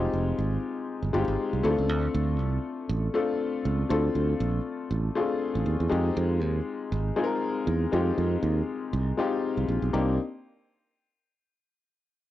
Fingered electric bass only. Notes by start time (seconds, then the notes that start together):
0.13 F1
0.39 G#1
1.02 G1
1.14 G1
1.28 G#1
1.53 C2
1.64 D2
1.78 C#2
1.89 D2
2.14 D2
2.39 C2
2.89 A1
3.65 C#2
3.90 D2
4.15 D2
4.40 A#1
4.91 A1
5.55 A1
5.66 D#2
5.80 E2
5.92 F2
6.17 F2
6.42 D#2
6.92 G#1
7.67 E2
7.93 F2
8.18 F2
8.43 D#2
8.93 C2
9.57 C2
9.68 A#1
9.82 B1
9.94 C2